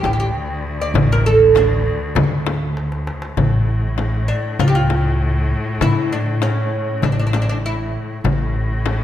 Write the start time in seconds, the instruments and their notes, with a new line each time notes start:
Already playing: cello D2
0.03 upright bass A1, oud G4, darbuka tek, frame drum
0.13 oud G4
0.20 oud G4
0.35 darbuka ka
0.81 oud D5
0.94 upright bass A1, darbuka dum, frame drum
1.12 oud A#4
1.26 oud A4
1.40 darbuka ka
1.55 oud D4, darbuka tek, frame drum
1.86 darbuka ka
2.15 upright bass D2, darbuka dum, frame drum
2.32 darbuka ka
2.47 darbuka tek, frame drum
2.77 darbuka tek
2.92 darbuka ka
3.07 darbuka tek
3.22 darbuka ka
3.37 upright bass A1, cello A2, frame drum, darbuka dum
3.69 darbuka ka
3.98 darbuka tek, frame drum
4.28 oud D4
4.59 upright bass C#2, oud F4, frame drum, darbuka dum
4.68 oud G4
4.75 oud F4
4.90 darbuka tek, frame drum
5.37 darbuka ka
5.81 upright bass A2, oud E4, frame drum, darbuka dum
6.12 oud D4, darbuka ka
6.42 oud C#4, darbuka tek, frame drum
7.02 upright bass A1, oud D4, darbuka dum, frame drum
7.12 oud D4
7.19 oud D4
7.27 oud D4
7.33 oud D4, darbuka tek, frame drum
7.42 oud D4
7.49 oud D4
7.66 oud E4
7.79 darbuka ka
8.24 upright bass A1, cello A2, frame drum, darbuka dum
8.56 darbuka ka
8.86 darbuka tek, frame drum